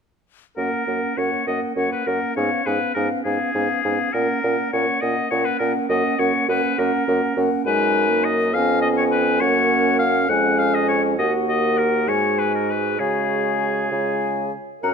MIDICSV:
0, 0, Header, 1, 6, 480
1, 0, Start_track
1, 0, Key_signature, 6, "major"
1, 0, Tempo, 594648
1, 459, Time_signature, 6, 3, 24, 8
1, 3817, Tempo, 585938
1, 8617, Tempo, 606673
1, 12059, End_track
2, 0, Start_track
2, 0, Title_t, "Flute"
2, 0, Program_c, 0, 73
2, 462, Note_on_c, 0, 78, 40
2, 698, Note_off_c, 0, 78, 0
2, 701, Note_on_c, 0, 78, 35
2, 939, Note_off_c, 0, 78, 0
2, 952, Note_on_c, 0, 78, 38
2, 1177, Note_off_c, 0, 78, 0
2, 1182, Note_on_c, 0, 78, 35
2, 1419, Note_off_c, 0, 78, 0
2, 1428, Note_on_c, 0, 78, 38
2, 1663, Note_off_c, 0, 78, 0
2, 1668, Note_on_c, 0, 78, 39
2, 1898, Note_off_c, 0, 78, 0
2, 1903, Note_on_c, 0, 77, 42
2, 2142, Note_off_c, 0, 77, 0
2, 2147, Note_on_c, 0, 77, 39
2, 2383, Note_off_c, 0, 77, 0
2, 2389, Note_on_c, 0, 77, 40
2, 2613, Note_off_c, 0, 77, 0
2, 2618, Note_on_c, 0, 77, 39
2, 2855, Note_off_c, 0, 77, 0
2, 2865, Note_on_c, 0, 77, 40
2, 3092, Note_off_c, 0, 77, 0
2, 3097, Note_on_c, 0, 77, 41
2, 3331, Note_off_c, 0, 77, 0
2, 3336, Note_on_c, 0, 78, 46
2, 3567, Note_off_c, 0, 78, 0
2, 3571, Note_on_c, 0, 78, 38
2, 3807, Note_off_c, 0, 78, 0
2, 3812, Note_on_c, 0, 78, 43
2, 4050, Note_off_c, 0, 78, 0
2, 4054, Note_on_c, 0, 78, 43
2, 4283, Note_off_c, 0, 78, 0
2, 4288, Note_on_c, 0, 78, 40
2, 4526, Note_off_c, 0, 78, 0
2, 4531, Note_on_c, 0, 78, 46
2, 4767, Note_off_c, 0, 78, 0
2, 4775, Note_on_c, 0, 78, 55
2, 5010, Note_off_c, 0, 78, 0
2, 5014, Note_on_c, 0, 78, 46
2, 5250, Note_off_c, 0, 78, 0
2, 5254, Note_on_c, 0, 78, 51
2, 5491, Note_off_c, 0, 78, 0
2, 5495, Note_on_c, 0, 78, 46
2, 5733, Note_off_c, 0, 78, 0
2, 5741, Note_on_c, 0, 78, 49
2, 5975, Note_off_c, 0, 78, 0
2, 5983, Note_on_c, 0, 78, 53
2, 6215, Note_off_c, 0, 78, 0
2, 6219, Note_on_c, 0, 80, 57
2, 6716, Note_off_c, 0, 80, 0
2, 6941, Note_on_c, 0, 80, 52
2, 7657, Note_on_c, 0, 78, 63
2, 7670, Note_off_c, 0, 80, 0
2, 8376, Note_off_c, 0, 78, 0
2, 8379, Note_on_c, 0, 80, 54
2, 9078, Note_off_c, 0, 80, 0
2, 9085, Note_on_c, 0, 78, 54
2, 9803, Note_on_c, 0, 80, 46
2, 9815, Note_off_c, 0, 78, 0
2, 10519, Note_off_c, 0, 80, 0
2, 10524, Note_on_c, 0, 80, 43
2, 11235, Note_off_c, 0, 80, 0
2, 11250, Note_on_c, 0, 80, 37
2, 11726, Note_off_c, 0, 80, 0
2, 11978, Note_on_c, 0, 82, 54
2, 12031, Note_off_c, 0, 82, 0
2, 12059, End_track
3, 0, Start_track
3, 0, Title_t, "Oboe"
3, 0, Program_c, 1, 68
3, 461, Note_on_c, 1, 70, 58
3, 946, Note_on_c, 1, 73, 53
3, 958, Note_off_c, 1, 70, 0
3, 1181, Note_off_c, 1, 73, 0
3, 1186, Note_on_c, 1, 75, 55
3, 1294, Note_off_c, 1, 75, 0
3, 1430, Note_on_c, 1, 73, 55
3, 1543, Note_off_c, 1, 73, 0
3, 1548, Note_on_c, 1, 71, 52
3, 1665, Note_on_c, 1, 70, 59
3, 1677, Note_off_c, 1, 71, 0
3, 1902, Note_off_c, 1, 70, 0
3, 1907, Note_on_c, 1, 73, 61
3, 2146, Note_on_c, 1, 71, 57
3, 2158, Note_off_c, 1, 73, 0
3, 2371, Note_off_c, 1, 71, 0
3, 2376, Note_on_c, 1, 70, 57
3, 2486, Note_off_c, 1, 70, 0
3, 2616, Note_on_c, 1, 68, 58
3, 3336, Note_on_c, 1, 70, 66
3, 3348, Note_off_c, 1, 68, 0
3, 3812, Note_off_c, 1, 70, 0
3, 3817, Note_on_c, 1, 73, 64
3, 4053, Note_on_c, 1, 75, 67
3, 4065, Note_off_c, 1, 73, 0
3, 4283, Note_off_c, 1, 75, 0
3, 4288, Note_on_c, 1, 73, 64
3, 4405, Note_on_c, 1, 71, 63
3, 4417, Note_off_c, 1, 73, 0
3, 4518, Note_off_c, 1, 71, 0
3, 4523, Note_on_c, 1, 70, 60
3, 4633, Note_off_c, 1, 70, 0
3, 4773, Note_on_c, 1, 75, 79
3, 5017, Note_on_c, 1, 73, 67
3, 5029, Note_off_c, 1, 75, 0
3, 5255, Note_off_c, 1, 73, 0
3, 5260, Note_on_c, 1, 71, 73
3, 5499, Note_on_c, 1, 70, 75
3, 5511, Note_off_c, 1, 71, 0
3, 5993, Note_off_c, 1, 70, 0
3, 6220, Note_on_c, 1, 71, 83
3, 6693, Note_on_c, 1, 75, 83
3, 6706, Note_off_c, 1, 71, 0
3, 6934, Note_on_c, 1, 77, 87
3, 6947, Note_off_c, 1, 75, 0
3, 7161, Note_off_c, 1, 77, 0
3, 7166, Note_on_c, 1, 75, 82
3, 7221, Note_off_c, 1, 75, 0
3, 7293, Note_on_c, 1, 73, 73
3, 7347, Note_off_c, 1, 73, 0
3, 7410, Note_on_c, 1, 71, 77
3, 7645, Note_on_c, 1, 73, 90
3, 7657, Note_off_c, 1, 71, 0
3, 8121, Note_off_c, 1, 73, 0
3, 8126, Note_on_c, 1, 77, 86
3, 8370, Note_on_c, 1, 78, 76
3, 8382, Note_off_c, 1, 77, 0
3, 8612, Note_on_c, 1, 77, 80
3, 8624, Note_off_c, 1, 78, 0
3, 8738, Note_on_c, 1, 75, 73
3, 8750, Note_off_c, 1, 77, 0
3, 8846, Note_off_c, 1, 75, 0
3, 8851, Note_on_c, 1, 73, 71
3, 8957, Note_off_c, 1, 73, 0
3, 9090, Note_on_c, 1, 75, 76
3, 9196, Note_off_c, 1, 75, 0
3, 9325, Note_on_c, 1, 75, 76
3, 9559, Note_on_c, 1, 70, 70
3, 9571, Note_off_c, 1, 75, 0
3, 9799, Note_on_c, 1, 73, 72
3, 9811, Note_off_c, 1, 70, 0
3, 10040, Note_on_c, 1, 71, 58
3, 10052, Note_off_c, 1, 73, 0
3, 10161, Note_off_c, 1, 71, 0
3, 10166, Note_on_c, 1, 70, 49
3, 10286, Note_on_c, 1, 71, 54
3, 10298, Note_off_c, 1, 70, 0
3, 10520, Note_on_c, 1, 68, 63
3, 10531, Note_off_c, 1, 71, 0
3, 11734, Note_off_c, 1, 68, 0
3, 11976, Note_on_c, 1, 78, 55
3, 12059, Note_off_c, 1, 78, 0
3, 12059, End_track
4, 0, Start_track
4, 0, Title_t, "Clarinet"
4, 0, Program_c, 2, 71
4, 459, Note_on_c, 2, 61, 40
4, 696, Note_off_c, 2, 61, 0
4, 703, Note_on_c, 2, 61, 37
4, 938, Note_off_c, 2, 61, 0
4, 942, Note_on_c, 2, 61, 37
4, 1174, Note_off_c, 2, 61, 0
4, 1179, Note_on_c, 2, 61, 37
4, 1414, Note_off_c, 2, 61, 0
4, 1419, Note_on_c, 2, 61, 36
4, 1658, Note_off_c, 2, 61, 0
4, 1662, Note_on_c, 2, 61, 38
4, 1899, Note_off_c, 2, 61, 0
4, 1904, Note_on_c, 2, 61, 41
4, 2142, Note_off_c, 2, 61, 0
4, 2150, Note_on_c, 2, 61, 38
4, 2378, Note_off_c, 2, 61, 0
4, 2382, Note_on_c, 2, 61, 42
4, 2618, Note_off_c, 2, 61, 0
4, 2626, Note_on_c, 2, 61, 37
4, 2859, Note_off_c, 2, 61, 0
4, 2865, Note_on_c, 2, 61, 39
4, 3098, Note_off_c, 2, 61, 0
4, 3102, Note_on_c, 2, 61, 39
4, 3334, Note_off_c, 2, 61, 0
4, 3339, Note_on_c, 2, 61, 46
4, 3575, Note_off_c, 2, 61, 0
4, 3581, Note_on_c, 2, 61, 44
4, 3814, Note_off_c, 2, 61, 0
4, 3818, Note_on_c, 2, 61, 42
4, 4053, Note_off_c, 2, 61, 0
4, 4057, Note_on_c, 2, 61, 42
4, 4291, Note_off_c, 2, 61, 0
4, 4296, Note_on_c, 2, 61, 46
4, 4530, Note_off_c, 2, 61, 0
4, 4534, Note_on_c, 2, 61, 45
4, 4769, Note_off_c, 2, 61, 0
4, 4777, Note_on_c, 2, 61, 53
4, 5012, Note_off_c, 2, 61, 0
4, 5017, Note_on_c, 2, 61, 49
4, 5254, Note_off_c, 2, 61, 0
4, 5259, Note_on_c, 2, 61, 52
4, 5496, Note_off_c, 2, 61, 0
4, 5505, Note_on_c, 2, 61, 50
4, 5738, Note_off_c, 2, 61, 0
4, 5742, Note_on_c, 2, 61, 48
4, 5975, Note_off_c, 2, 61, 0
4, 5985, Note_on_c, 2, 61, 52
4, 6216, Note_off_c, 2, 61, 0
4, 6222, Note_on_c, 2, 63, 54
4, 6802, Note_off_c, 2, 63, 0
4, 6942, Note_on_c, 2, 61, 57
4, 7640, Note_off_c, 2, 61, 0
4, 7648, Note_on_c, 2, 61, 62
4, 8356, Note_off_c, 2, 61, 0
4, 8374, Note_on_c, 2, 61, 56
4, 9075, Note_off_c, 2, 61, 0
4, 9090, Note_on_c, 2, 66, 54
4, 9769, Note_off_c, 2, 66, 0
4, 9796, Note_on_c, 2, 66, 47
4, 10506, Note_off_c, 2, 66, 0
4, 10525, Note_on_c, 2, 66, 45
4, 11249, Note_on_c, 2, 65, 37
4, 11261, Note_off_c, 2, 66, 0
4, 11735, Note_off_c, 2, 65, 0
4, 11969, Note_on_c, 2, 70, 76
4, 12059, Note_off_c, 2, 70, 0
4, 12059, End_track
5, 0, Start_track
5, 0, Title_t, "French horn"
5, 0, Program_c, 3, 60
5, 462, Note_on_c, 3, 58, 46
5, 698, Note_off_c, 3, 58, 0
5, 705, Note_on_c, 3, 58, 36
5, 941, Note_off_c, 3, 58, 0
5, 945, Note_on_c, 3, 58, 36
5, 1181, Note_off_c, 3, 58, 0
5, 1194, Note_on_c, 3, 58, 41
5, 1423, Note_off_c, 3, 58, 0
5, 1427, Note_on_c, 3, 58, 37
5, 1660, Note_off_c, 3, 58, 0
5, 1665, Note_on_c, 3, 58, 38
5, 1900, Note_off_c, 3, 58, 0
5, 1905, Note_on_c, 3, 59, 45
5, 2139, Note_off_c, 3, 59, 0
5, 2144, Note_on_c, 3, 59, 40
5, 2381, Note_off_c, 3, 59, 0
5, 2385, Note_on_c, 3, 59, 42
5, 2620, Note_off_c, 3, 59, 0
5, 2628, Note_on_c, 3, 59, 40
5, 2855, Note_off_c, 3, 59, 0
5, 2860, Note_on_c, 3, 59, 41
5, 3096, Note_off_c, 3, 59, 0
5, 3104, Note_on_c, 3, 59, 43
5, 3338, Note_off_c, 3, 59, 0
5, 3342, Note_on_c, 3, 58, 50
5, 3576, Note_off_c, 3, 58, 0
5, 3580, Note_on_c, 3, 58, 44
5, 3813, Note_off_c, 3, 58, 0
5, 3824, Note_on_c, 3, 58, 43
5, 4056, Note_off_c, 3, 58, 0
5, 4063, Note_on_c, 3, 58, 41
5, 4294, Note_off_c, 3, 58, 0
5, 4300, Note_on_c, 3, 58, 42
5, 4532, Note_off_c, 3, 58, 0
5, 4537, Note_on_c, 3, 58, 48
5, 4771, Note_off_c, 3, 58, 0
5, 4778, Note_on_c, 3, 58, 52
5, 5012, Note_off_c, 3, 58, 0
5, 5019, Note_on_c, 3, 58, 48
5, 5255, Note_off_c, 3, 58, 0
5, 5263, Note_on_c, 3, 58, 51
5, 5495, Note_off_c, 3, 58, 0
5, 5499, Note_on_c, 3, 58, 52
5, 5735, Note_off_c, 3, 58, 0
5, 5739, Note_on_c, 3, 58, 51
5, 5974, Note_off_c, 3, 58, 0
5, 5982, Note_on_c, 3, 58, 51
5, 6211, Note_off_c, 3, 58, 0
5, 6216, Note_on_c, 3, 56, 66
5, 6574, Note_on_c, 3, 58, 59
5, 6586, Note_off_c, 3, 56, 0
5, 6936, Note_on_c, 3, 59, 60
5, 6949, Note_off_c, 3, 58, 0
5, 7656, Note_on_c, 3, 58, 62
5, 7668, Note_off_c, 3, 59, 0
5, 8238, Note_off_c, 3, 58, 0
5, 8377, Note_on_c, 3, 56, 52
5, 9076, Note_off_c, 3, 56, 0
5, 9092, Note_on_c, 3, 58, 61
5, 9799, Note_on_c, 3, 56, 47
5, 9810, Note_off_c, 3, 58, 0
5, 10514, Note_off_c, 3, 56, 0
5, 10518, Note_on_c, 3, 56, 46
5, 11232, Note_off_c, 3, 56, 0
5, 11251, Note_on_c, 3, 56, 38
5, 11726, Note_off_c, 3, 56, 0
5, 11972, Note_on_c, 3, 61, 53
5, 12059, Note_off_c, 3, 61, 0
5, 12059, End_track
6, 0, Start_track
6, 0, Title_t, "Bassoon"
6, 0, Program_c, 4, 70
6, 461, Note_on_c, 4, 42, 45
6, 569, Note_off_c, 4, 42, 0
6, 702, Note_on_c, 4, 42, 40
6, 811, Note_off_c, 4, 42, 0
6, 946, Note_on_c, 4, 42, 39
6, 1054, Note_off_c, 4, 42, 0
6, 1186, Note_on_c, 4, 42, 37
6, 1294, Note_off_c, 4, 42, 0
6, 1423, Note_on_c, 4, 42, 45
6, 1532, Note_off_c, 4, 42, 0
6, 1668, Note_on_c, 4, 42, 39
6, 1777, Note_off_c, 4, 42, 0
6, 1910, Note_on_c, 4, 44, 47
6, 2018, Note_off_c, 4, 44, 0
6, 2148, Note_on_c, 4, 44, 44
6, 2256, Note_off_c, 4, 44, 0
6, 2386, Note_on_c, 4, 44, 42
6, 2494, Note_off_c, 4, 44, 0
6, 2624, Note_on_c, 4, 44, 39
6, 2731, Note_off_c, 4, 44, 0
6, 2863, Note_on_c, 4, 44, 44
6, 2970, Note_off_c, 4, 44, 0
6, 3107, Note_on_c, 4, 44, 42
6, 3213, Note_off_c, 4, 44, 0
6, 3342, Note_on_c, 4, 46, 49
6, 3450, Note_off_c, 4, 46, 0
6, 3583, Note_on_c, 4, 46, 46
6, 3690, Note_off_c, 4, 46, 0
6, 3819, Note_on_c, 4, 46, 46
6, 3927, Note_off_c, 4, 46, 0
6, 4057, Note_on_c, 4, 46, 47
6, 4165, Note_off_c, 4, 46, 0
6, 4295, Note_on_c, 4, 46, 49
6, 4403, Note_off_c, 4, 46, 0
6, 4532, Note_on_c, 4, 46, 48
6, 4640, Note_off_c, 4, 46, 0
6, 4771, Note_on_c, 4, 42, 61
6, 4880, Note_off_c, 4, 42, 0
6, 5014, Note_on_c, 4, 42, 50
6, 5124, Note_off_c, 4, 42, 0
6, 5254, Note_on_c, 4, 42, 51
6, 5364, Note_off_c, 4, 42, 0
6, 5499, Note_on_c, 4, 42, 56
6, 5607, Note_off_c, 4, 42, 0
6, 5740, Note_on_c, 4, 42, 62
6, 5848, Note_off_c, 4, 42, 0
6, 5976, Note_on_c, 4, 42, 54
6, 6084, Note_off_c, 4, 42, 0
6, 6216, Note_on_c, 4, 42, 58
6, 6935, Note_on_c, 4, 41, 57
6, 6947, Note_off_c, 4, 42, 0
6, 7645, Note_off_c, 4, 41, 0
6, 7649, Note_on_c, 4, 42, 67
6, 8357, Note_off_c, 4, 42, 0
6, 8372, Note_on_c, 4, 41, 54
6, 9074, Note_off_c, 4, 41, 0
6, 9090, Note_on_c, 4, 39, 54
6, 9801, Note_on_c, 4, 44, 46
6, 9813, Note_off_c, 4, 39, 0
6, 10518, Note_off_c, 4, 44, 0
6, 10523, Note_on_c, 4, 49, 42
6, 11235, Note_off_c, 4, 49, 0
6, 11250, Note_on_c, 4, 49, 38
6, 11726, Note_off_c, 4, 49, 0
6, 11975, Note_on_c, 4, 42, 61
6, 12059, Note_off_c, 4, 42, 0
6, 12059, End_track
0, 0, End_of_file